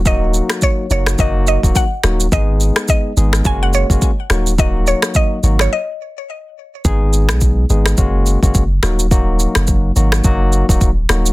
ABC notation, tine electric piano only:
X:1
M:4/4
L:1/16
Q:"Swing 16ths" 1/4=106
K:D#phr
V:1 name="Tine electric piano"
[F,A,DF]6 [F,A,DF]2 [F,A,DF]3 [F,A,DF] z2 [F,A,DF]2 | [G,B,DG]6 [G,B,DG]2 [G,A,CF]3 [G,A,CF] z2 [F,A,DF]2 | [F,A,DF]6 [F,A,DF]2 z8 | [G,B,DG]6 [G,B,DG]2 [G,A,CF]3 [G,A,CF] z2 [F,A,DF]2 |
[F,A,DF]6 [F,A,DF]2 [F,A,DF]3 [F,A,DF] z2 [F,A,DF]2 |]